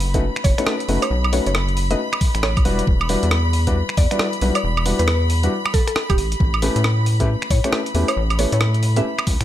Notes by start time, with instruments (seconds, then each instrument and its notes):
Already playing: analog synth bass F#1, violin section B5
0.00 open hi-hat
0.14 grand piano A3 C#4 D#4 F#4 B4, kick, closed hi-hat
0.36 finger snap
0.44 analog synth bass F#1, synth pluck C#5, kick, open hi-hat
0.58 grand piano A3 C#4 D#4 F#4 B4, synth pluck C#5, finger snap, closed hi-hat
0.67 cross-stick
0.80 closed hi-hat
0.89 analog synth bass F#1, grand piano A3 C#4 D#4 F#4 B4, open hi-hat
1.02 synth pluck C#5, closed hi-hat, high woodblock
1.11 analog synth bass B1
1.24 high woodblock
1.33 grand piano A3 C#4 D#4 F#4 B4, synth pluck C#5, open hi-hat
1.46 analog synth bass F#1, synth pluck C#5, closed hi-hat
1.55 cross-stick
1.69 closed hi-hat
1.77 open hi-hat
1.91 grand piano A3 C#4 D#4 F#4 B4, synth pluck D#5, closed hi-hat
2.13 finger snap, high woodblock
2.21 kick, open hi-hat
2.35 analog synth bass A1, finger snap, closed hi-hat
2.43 synth pluck C#5, cross-stick
2.57 analog synth bass B1, kick, closed hi-hat, high woodblock
2.65 analog synth bass E1, grand piano G3 D4 E4 F#4 B4, open hi-hat
2.79 closed hi-hat
2.87 analog synth bass E1, kick
3.01 high woodblock
3.09 grand piano G3 D4 E4 F#4 B4, open hi-hat
3.23 analog synth bass E2, closed hi-hat
3.31 cross-stick
3.53 open hi-hat
3.67 grand piano G3 D4 E4 F#4 B4, kick, closed hi-hat
3.89 finger snap
3.97 analog synth bass E2, synth pluck D5, kick, open hi-hat
4.11 grand piano G3 D4 E4 F#4 B4, synth pluck D5, finger snap, closed hi-hat
4.19 cross-stick
4.33 closed hi-hat
4.41 analog synth bass B1, grand piano G3 D4 E4 F#4 B4, open hi-hat
4.55 synth pluck D5, closed hi-hat, high woodblock
4.64 analog synth bass E1
4.77 high woodblock
4.86 grand piano G3 D4 E4 F#4 B4, open hi-hat
4.99 analog synth bass E2, synth pluck B4, closed hi-hat
5.08 synth pluck B4, cross-stick
5.30 open hi-hat
5.43 grand piano G3 D4 E4 F#4 B4, closed hi-hat
5.66 finger snap, high woodblock
5.74 synth pluck A4, kick, open hi-hat
5.87 synth pluck A4, finger snap, closed hi-hat
5.96 cross-stick
6.10 analog synth bass D1, synth pluck G4, kick, closed hi-hat, high woodblock
6.18 analog synth bass A1, open hi-hat
6.32 closed hi-hat
6.40 analog synth bass A1, kick
6.54 high woodblock
6.62 grand piano A3 C#4 E4 G4 B4, open hi-hat
6.76 analog synth bass A2, closed hi-hat
6.84 cross-stick
7.06 open hi-hat
7.20 grand piano A3 C#4 E4 G4 B4, kick, closed hi-hat
7.42 finger snap
7.50 analog synth bass A2, synth pluck C#5, kick, open hi-hat
7.64 grand piano A3 C#4 E4 G4 B4, synth pluck C#5, finger snap, closed hi-hat
7.73 cross-stick
7.86 closed hi-hat
7.95 analog synth bass E2, grand piano A3 C#4 E4 G4 B4, open hi-hat
8.08 synth pluck C#5, closed hi-hat, high woodblock
8.17 analog synth bass A1
8.30 closed hi-hat, high woodblock
8.39 grand piano A3 C#4 E4 G4 B4, synth pluck C#5, open hi-hat
8.52 analog synth bass A2, synth pluck C#5, closed hi-hat
8.61 cross-stick
8.74 closed hi-hat
8.83 open hi-hat
8.96 grand piano A3 C#4 E4 G4 B4, synth pluck E5, closed hi-hat
9.19 finger snap, high woodblock
9.27 analog synth bass C#2, kick, open hi-hat
9.41 analog synth bass A2, finger snap, closed hi-hat